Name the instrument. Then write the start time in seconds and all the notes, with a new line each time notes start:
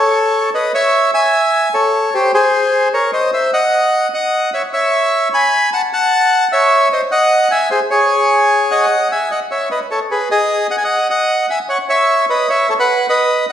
bandoneon
Already playing: A4 C#5
0.54 B4 D#5
0.74 C#5 E5
1.14 E5 G#5
1.74 A4 C#5
2.14 G4 C5
2.34 G#4 C5
2.94 A#4 C#5
3.13 C5 D#5
3.33 C5 E5
3.53 D#5 F#5
4.14 D#5 F#5
4.53 C#5 E5
4.73 C#5 E5
5.34 G#5 B5
5.73 F#5 A5
5.93 F#5 A5
6.52 C#5 E5
6.92 C5 D#5
7.11 D#5 F#5
7.51 E5 G#5
7.71 G#4 C5
7.91 G#4 C#5
8.71 D#5 F#5
9.11 E5 G#5
9.31 D#5 F#5
9.51 C#5 E5
9.71 B4 D#5
9.91 A4 C#5
10.11 G#4 B4
10.31 G#4 D#5
10.70 D#5 F#5
10.78 G#5
10.84 D#5 F#5
11.10 D#5 F#5
11.50 E5 G#5
11.69 C#5 F#5
11.89 C#5 E5
12.30 B4 D#5
12.49 C#5 E5
12.70 A4 C#5
12.79 B4 F#5
13.09 B4 D#5